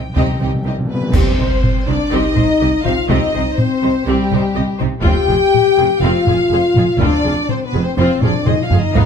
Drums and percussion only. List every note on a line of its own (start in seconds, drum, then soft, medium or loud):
0.16 taiko medium
1.14 concert bass drum medium
1.14 taiko medium
1.14 crash medium
1.63 taiko low-mid medium
2.36 taiko low-mid medium
2.85 taiko low-mid soft
3.09 taiko medium
3.58 taiko low-mid medium
4.32 taiko low-mid soft
4.81 taiko low-mid soft
5.05 taiko medium
5.54 taiko low-mid medium
6.27 taiko low-mid soft
6.76 taiko low-mid soft
7.00 taiko medium
7.49 taiko low-mid medium
8.22 taiko low-mid medium
8.47 taiko low-mid medium
8.71 taiko low medium
8.95 taiko medium